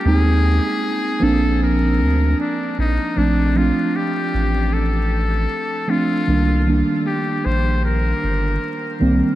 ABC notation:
X:1
M:4/4
L:1/16
Q:"Swing 16ths" 1/4=77
K:Bb
V:1 name="Muted trumpet"
_A6 =A2 B4 D2 E2 | D2 F2 G4 A6 F2- | F2 z2 G2 c2 B6 z2 |]
V:2 name="Synth keys"
[_A,B,CE]6 [F,B,CD]6 z4 | [F,A,CD]2 [F,A,CD]6 z6 [F,A,CD]2 | [E,G,B,D]2 [E,G,B,D]6 z6 [E,G,B,C]2 |]
V:3 name="Analog synth bass" clef=bass
E,,3 z3 B,,,4 D,,2 z2 B,,, z | B,,,3 z3 A,,,6 z4 | C,,3 z3 B,,,4 G,,,2 z2 C,, z |]